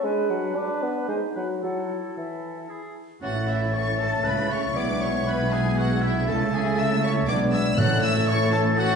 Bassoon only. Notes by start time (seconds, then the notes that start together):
0.04 G#3
0.30 F#3
0.56 D4
0.83 B3
1.09 G#3
1.37 F#3
1.64 F#3
2.18 E3
3.23 C#4
4.76 B3
6.29 A3
7.29 B3
7.78 A3